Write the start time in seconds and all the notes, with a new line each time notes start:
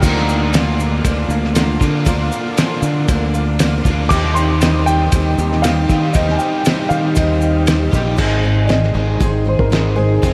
Already playing: A#4
0.01 D2 D3 F3 A#3 D4 F4 A#4 D5 F5 D6, kick, crash, shaker
0.17 snare
0.28 A#3 D4 F4, shaker
0.53 D3 F3 A#3 D4 F4 A#4 D5 G#5, snare, ride bell, shaker
0.78 A#3 D4 F4, shaker
1.04 D2 F3 A#3 D4 F4 A#4 D5 F5, kick, ride bell, shaker
1.29 D2 D4 F4 A#4 D5 F5, shaker
1.33 A#3
1.44 snare
1.55 D3 F3 A#3 D4 F4 A#4 D5 F5, snare, ride bell, shaker
1.80 D3 A#3 D4 F4, kick, snare, shaker
2.05 D2 D3 F3 A#3 D4 F4 A#4 D5 F5, kick, ride bell, shaker
2.31 A#3 D4 F4, shaker
2.57 D3 F3 A#3 D4 F4 A#4 D5 G#5, snare, ride bell, shaker
2.82 D3 A#3 D4 F4, shaker
3.08 D2 F3 A#3 D4 F4 A#4 D5 F5, kick, ride bell, shaker
3.34 A#3 D4 F4 A#4 D5 F5, shaker
3.59 D3 F3 A#3 D4 F4 A#4 D5 F5, snare, ride bell, shaker
3.85 D2 D3 A#3 D4 F4, kick, shaker
4.09 D#2 D#3 G3 C4 D#4 G4 C5 D#5 G5 D6 D#6, kick, crash, shaker
4.24 snare
4.34 D#4 G4 C6, shaker
4.39 C4
4.61 D#3 C4 D#4 G4 C5 D#5 G5, snare, ride bell, shaker
4.86 C4 D#4 G4 G5, shaker
5.12 D#2 D#3 C4 D#4 G4 C5 D#5 G5, kick, ride bell, shaker
5.38 D#2 C4 D#4 G4 C5 D#5 A#5, shaker
5.52 snare
5.62 D#3 C4 D#4 G4 C5 D#5 F5, snare, ride bell, shaker
5.66 G4
5.89 D#3 G3 C4 D#4 G4, kick, snare, shaker
6.12 D#2 D#3 G3 C4 D#4 G4 C5 D#5 G5 F6, kick, ride bell, shaker
6.17 G4
6.29 G#5, snare
6.38 C4 D#4 G4 G5, shaker
6.64 D#3 C4 D#4 G4 C5 D#5 G5, snare, ride bell, shaker
6.89 D#3 D#4 G4 F5, shaker
6.93 C4
7.15 D#2 D#3 C4 D#4 G4 C5 D#5 G5, kick, ride bell, shaker
7.41 C4 D#4 G4 C5 D#5 G5, shaker
7.66 D#3 C4 D#4 G4 C5 D#5 G5, snare, ride bell, shaker
7.91 A#1 D#3 G3 C4 D#4 G4, kick, snare, shaker
8.16 G#1 G#2 D#3 G#3 C4 D#4 G#4 C5, kick, crash
8.43 G#2 D#3 G#3 C4 D#4 G#4
8.65 G#2 G#3 C4 D5 D#5, closed hi-hat
8.69 D#3 D#4 G#4, snare
8.83 snare
8.94 G#1 G#2 D#3 G#3 C4 D#4 G#4
9.20 G#1 G#2 D#3 G#3 C4 D#4 G#4, kick, closed hi-hat
9.45 G#2 D#3 G#3 C4 D#4 G#4 C5
9.59 G#1 A#4, kick
9.70 G#2 D#3 G#3 C4 D#4 G#4, snare, closed hi-hat
9.96 G#2 D#3 G#3 C4 D#4 G#4 C5
10.22 F1 F2 C3 F3 G#3 C4 F4 G#4, kick, closed hi-hat